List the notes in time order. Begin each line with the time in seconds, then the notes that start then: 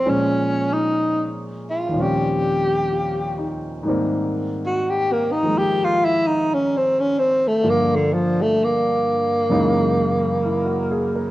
Already playing: C4
0.05 A#2 F3 G#3 C#4 C5
0.73 D#4
1.70 F4
1.89 D#2 A#2
1.94 F3 G3 C4
2.00 C#4 G4
2.92 F4
3.38 D#4
3.83 G#2 D#3 G3
3.88 A#3 C4
4.66 F#4
4.90 G4
5.13 A#3
5.32 D#4
5.42 D#3 F3 G#3 A#3
5.58 G4
5.85 F4
6.05 E4
6.27 D#4
6.54 C#4
6.77 C4
7.00 C#4
7.19 C4
7.48 A3
7.63 G2 D3 F3 A#3 A4
7.70 A#3
7.96 D3
8.14 F3
8.42 A3
8.64 A#3
9.49 F#2 C#3 E3 G#3 A#3 D#4
10.45 E4
10.65 F#4
10.91 G#4
11.15 A#4